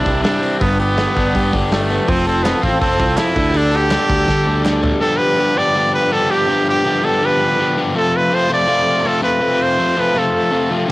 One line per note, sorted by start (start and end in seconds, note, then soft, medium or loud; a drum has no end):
0.00 0.60 C3 medium
0.00 0.60 E3 medium
0.00 0.60 G3 medium
0.00 0.40 C4 medium
0.00 0.23 D4 medium
0.00 0.60 D4 medium
0.00 0.59 E4 medium
0.00 0.60 E4 medium
0.00 0.59 G4 medium
0.06 0.21 C2 medium
0.06 kick medium
0.06 open hi-hat medium
0.22 0.60 G3 medium
0.22 0.58 D4 medium
0.22 snare loud
0.22 open hi-hat medium
0.41 0.61 C4 medium
0.41 open hi-hat medium
0.60 1.06 G1 medium
0.60 1.15 G2 loud
0.60 1.53 G2 medium
0.60 1.15 D3 loud
0.60 1.15 G3 loud
0.60 0.78 B3 medium
0.60 1.16 B3 loud
0.60 1.15 D4 loud
0.60 1.14 G4 loud
0.60 kick loud
0.60 open hi-hat medium
0.80 1.54 B3 medium
0.80 1.34 G4 medium
0.80 open hi-hat medium
0.97 1.89 B3 medium
0.97 snare loud
0.97 open hi-hat medium
1.15 1.32 G1 medium
1.15 2.08 D3 medium
1.15 2.07 G3 medium
1.15 2.08 B3 medium
1.15 2.07 D4 medium
1.15 1.51 D4 medium
1.15 2.07 G4 medium
1.15 kick medium
1.15 open hi-hat medium
1.19 2.09 G2 medium
1.35 1.50 G2 medium
1.35 2.09 G4 medium
1.35 kick medium
1.35 open hi-hat medium
1.53 1.98 G1 loud
1.53 2.08 D4 medium
1.53 kick medium
1.53 open hi-hat medium
1.71 2.07 G3 medium
1.71 2.10 A3 medium
1.71 snare loud
1.71 open hi-hat medium
1.90 2.08 B3 medium
1.90 open hi-hat medium
2.07 2.53 F1 medium
2.07 2.62 F3 medium
2.07 3.00 F3 medium
2.07 2.27 C4 loud
2.07 2.63 C4 loud
2.07 3.36 F4 medium
2.07 2.62 F4 loud
2.07 2.61 A4 loud
2.07 3.36 C5 medium
2.07 5.00 A5 medium
2.07 3.36 C6 medium
2.07 kick loud
2.07 open hi-hat medium
2.27 2.44 C4 medium
2.27 2.80 A4 medium
2.27 open hi-hat medium
2.43 2.62 B3 medium
2.43 3.37 C4 medium
2.43 snare loud
2.43 clap medium
2.43 open hi-hat medium
2.62 2.78 A1 medium
2.62 2.81 C4 medium
2.62 3.37 C4 medium
2.62 2.99 F4 medium
2.62 3.36 F4 medium
2.62 3.35 A4 medium
2.62 kick medium
2.62 open hi-hat medium
2.66 3.35 F3 medium
2.81 2.97 F1 loud
2.81 3.20 C4 loud
2.81 3.37 A4 medium
2.81 kick medium
2.81 open hi-hat medium
2.92 snare soft
3.00 3.15 C2 medium
3.00 3.37 F4 medium
3.00 kick medium
3.00 open hi-hat medium
3.17 3.35 F3 medium
3.17 3.59 E4 loud
3.17 snare loud
3.17 clap medium
3.17 open hi-hat medium
3.35 3.96 D2 medium
3.35 3.52 D3 medium
3.35 3.89 D3 medium
3.35 3.90 G3 loud
3.35 3.92 D4 loud
3.35 5.00 G4 medium
3.35 3.92 A4 medium
3.35 5.01 D5 medium
3.35 5.00 D6 medium
3.35 kick medium
3.35 open hi-hat soft
3.54 4.46 D3 medium
3.54 3.78 D4 loud
3.54 open hi-hat medium
3.72 4.27 A4 medium
3.72 open hi-hat medium
3.76 4.85 G4 loud
3.90 4.82 D3 medium
3.90 4.81 G3 medium
3.90 4.82 G3 medium
3.90 4.83 D4 medium
3.90 4.84 A4 medium
3.90 snare loud
3.90 clap medium
3.90 open hi-hat medium
4.09 4.25 D2 medium
4.09 4.46 D4 medium
4.09 kick medium
4.09 open hi-hat medium
4.28 4.44 D3 loud
4.28 5.02 A4 medium
4.28 kick medium
4.28 snare medium
4.46 4.91 D2 loud
4.46 5.01 D4 medium
4.64 5.00 D3 medium
4.64 snare medium
4.64 clap medium
4.82 5.01 G3 medium
4.82 floor tom medium
5.01 5.38 G2 medium
5.01 5.37 D3 medium
5.01 5.38 F3 medium
5.01 5.38 B3 medium
5.01 5.39 D4 medium
5.01 7.93 G4 medium
5.01 5.39 G4 loud
5.01 5.19 A4 loud
5.01 10.92 F5 medium
5.01 7.93 B5 medium
5.01 10.92 D6 loud
5.17 5.59 B4 loud
5.38 5.55 G2 medium
5.38 5.55 D3 medium
5.38 5.56 F3 medium
5.38 5.57 B3 medium
5.38 5.57 D4 medium
5.38 5.57 G4 medium
5.56 5.73 G2 medium
5.56 5.74 D3 medium
5.56 5.76 F3 medium
5.56 5.75 B3 medium
5.56 5.76 D4 medium
5.56 5.76 G4 loud
5.56 5.94 D5 loud
5.75 6.10 G2 loud
5.75 6.10 D3 loud
5.75 6.12 F3 medium
5.75 6.11 B3 loud
5.75 6.12 D4 loud
5.75 6.11 G4 loud
5.94 6.14 B4 loud
6.11 6.29 G2 medium
6.11 6.29 D3 loud
6.11 6.30 F3 medium
6.11 6.30 B3 medium
6.11 6.31 D4 medium
6.11 6.30 G4 medium
6.11 6.32 A4 loud
6.30 6.47 G2 medium
6.30 6.47 D3 medium
6.30 6.49 F3 medium
6.30 6.48 B3 loud
6.30 6.49 D4 loud
6.30 6.67 G4 loud
6.30 6.48 G4 medium
6.48 6.83 G2 loud
6.48 6.84 D3 medium
6.48 6.85 F3 loud
6.48 6.85 B3 loud
6.48 6.86 D4 loud
6.48 6.85 G4 loud
6.69 7.06 G4 loud
6.84 7.02 G2 medium
6.84 7.02 D3 medium
6.84 7.03 F3 medium
6.84 7.03 B3 medium
6.84 7.04 D4 medium
6.84 7.03 G4 medium
7.03 7.21 G2 loud
7.03 7.21 D3 medium
7.03 7.23 F3 medium
7.03 7.22 B3 loud
7.03 7.24 D4 medium
7.03 7.23 G4 medium
7.03 7.27 A4 medium
7.22 7.58 G2 loud
7.22 7.59 D3 loud
7.22 7.59 F3 loud
7.22 7.59 B3 loud
7.22 7.60 D4 loud
7.22 7.60 G4 loud
7.22 7.79 B4 loud
7.59 7.76 G2 medium
7.59 7.76 D3 medium
7.59 7.78 F3 medium
7.59 7.77 B3 medium
7.59 7.78 D4 loud
7.59 7.78 G4 loud
7.77 7.94 G2 medium
7.77 7.94 D3 medium
7.77 7.95 F3 medium
7.77 7.95 B3 medium
7.77 7.95 D4 loud
7.77 7.96 G4 loud
7.94 8.31 F2 loud
7.94 8.31 C3 loud
7.94 8.32 F3 loud
7.94 8.32 A3 loud
7.94 8.32 C4 loud
7.94 8.33 F4 loud
7.94 10.87 A4 medium
7.94 8.18 A4 loud
7.94 10.87 A5 medium
8.16 8.36 B4 medium
8.31 8.49 F2 medium
8.31 8.48 C3 medium
8.31 8.50 F3 medium
8.31 8.49 A3 medium
8.31 8.50 C4 medium
8.31 8.50 F4 loud
8.31 8.52 C5 loud
8.49 8.65 F2 medium
8.49 8.66 C3 medium
8.49 8.67 F3 loud
8.49 8.67 A3 loud
8.49 8.67 C4 medium
8.49 8.68 F4 loud
8.54 9.09 D5 loud
8.67 9.03 F2 loud
8.67 9.03 C3 loud
8.67 9.04 F3 loud
8.67 9.05 A3 loud
8.67 9.05 C4 loud
8.67 9.06 F4 loud
9.04 9.20 F2 medium
9.04 9.21 C3 medium
9.04 9.22 F3 medium
9.04 9.22 A3 loud
9.04 9.22 C4 loud
9.04 9.23 F4 loud
9.04 9.23 A4 loud
9.21 9.39 F2 medium
9.21 9.39 C3 medium
9.21 9.41 F3 medium
9.21 9.40 A3 medium
9.21 9.41 C4 medium
9.21 9.41 F4 loud
9.21 9.64 B4 loud
9.40 9.77 F2 loud
9.40 9.78 C3 loud
9.40 9.79 F3 loud
9.40 9.78 A3 loud
9.40 9.78 C4 loud
9.40 9.80 F4 loud
9.62 10.01 C5 loud
9.78 9.95 F2 medium
9.78 9.95 C3 medium
9.78 9.97 F3 medium
9.78 9.96 A3 medium
9.78 9.96 C4 loud
9.78 9.97 F4 medium
9.96 10.14 F2 medium
9.96 10.14 C3 medium
9.96 10.15 F3 medium
9.96 10.15 A3 loud
9.96 10.15 C4 loud
9.96 10.16 F4 medium
9.96 10.20 B4 medium
10.15 10.50 F2 loud
10.15 10.50 C3 loud
10.15 10.52 F3 loud
10.15 10.51 A3 loud
10.15 10.51 C4 loud
10.15 10.53 F4 loud
10.15 10.73 A4 medium
10.51 10.69 F2 medium
10.51 10.70 C3 medium
10.51 10.70 F3 medium
10.51 10.70 A3 medium
10.51 10.70 C4 loud
10.51 10.72 F4 loud
10.70 10.87 F2 medium
10.70 10.88 C3 medium
10.70 10.88 F3 medium
10.70 10.89 A3 medium
10.70 10.89 C4 medium
10.70 10.89 F4 medium
10.87 10.92 G2 medium
10.87 10.92 D3 loud
10.87 10.92 F3 loud